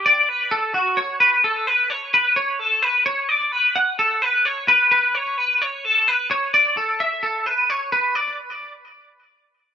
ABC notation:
X:1
M:7/8
L:1/8
Q:1/4=129
K:Amix
V:1 name="Clean electric guitar"
d B A F c B A | B c B c A B c | d B f A B c B | B c B c A B c |
d A e A B c B | d z6 |]